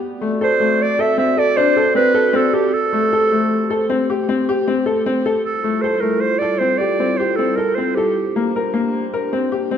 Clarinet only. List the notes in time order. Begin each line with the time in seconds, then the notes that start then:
0.43 C5
0.82 D5
1.01 E5
1.19 E5
1.39 D5
1.57 C5
1.96 B4
2.36 A4
2.54 G4
2.74 A4
5.45 A4
5.82 C5
6.01 A#4
6.21 C5
6.39 D5
6.58 C5
6.78 D5
7.17 C5
7.36 A4
7.56 A#4
7.75 C5
7.95 G4